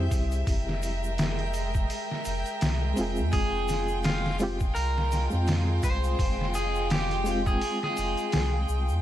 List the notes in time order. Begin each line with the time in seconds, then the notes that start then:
Already playing: G3 G#3 C4 E4 G4 C5 E5 G5
0.11 C2, kick, open hi-hat, shaker
0.31 closed hi-hat, shaker
0.46 F1 A#4, kick, open hi-hat, shaker
0.69 snare
0.82 open hi-hat, shaker
1.04 shaker
1.18 snare, open hi-hat, shaker
1.39 closed hi-hat
1.54 open hi-hat, shaker
1.74 kick, shaker
1.90 open hi-hat, shaker
2.11 snare
2.25 F1, open hi-hat, shaker
2.46 closed hi-hat, shaker
2.61 C2, snare, open hi-hat, shaker
2.94 G#3 C4, open hi-hat, shaker
2.98 F1 F4 G#4
3.16 F2, shaker
3.32 F1 G#3 F4 G#4, kick, open hi-hat, shaker
3.68 snare, open hi-hat, shaker
3.88 shaker
4.03 F4, snare, open hi-hat, shaker
4.26 snare
4.39 G#3 C4 F4, open hi-hat, shaker
4.43 G4
4.60 kick, shaker
4.75 C2 A#4, open hi-hat, shaker
4.98 snare
5.11 snare, open hi-hat, shaker
5.30 F2 G#3 C4, shaker
5.35 F4 G5
5.47 snare, open hi-hat, shaker
5.83 C2 C5, kick, open hi-hat, shaker
6.04 closed hi-hat, shaker
6.19 F1, kick, open hi-hat, shaker
6.41 snare
6.54 G#4, open hi-hat, shaker
6.75 shaker
6.90 G4, snare, open hi-hat, shaker
7.11 closed hi-hat
7.24 G#3 C4, open hi-hat, shaker
7.29 F4 G5
7.46 G#4, kick, shaker
7.61 open hi-hat, shaker
7.83 G#4, snare
7.97 F1, open hi-hat, shaker
8.17 closed hi-hat, shaker
8.32 C2, snare, open hi-hat, shaker
8.69 C2, shaker
8.89 F2, shaker